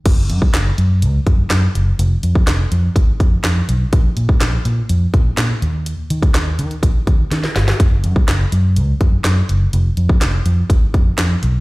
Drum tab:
CC |x---------------|----------------|----------------|----------------|
HH |x-x-x-x-x-x-x-x-|x-x-x-x-x-x-x-x-|x-x-x-x-x-x-x-x-|x-xxx-xxx-x-x-x-|
CP |----x-------x---|----x-------x---|----x-------x---|----x-----------|
SD |----o-------o---|----o-------o---|----o-------o---|----o-------oooo|
BD |o--o------o-----|---o----o-o-----|o--o------o-----|---o----o-o-----|

CC |----------------|----------------|
HH |x-x-x-x-x-x-x-x-|x-x-x-x-x-x-x-x-|
CP |----x-------x---|----x-------x---|
SD |----o-------o---|----o-------o---|
BD |o--o------o-----|---o----o-o-----|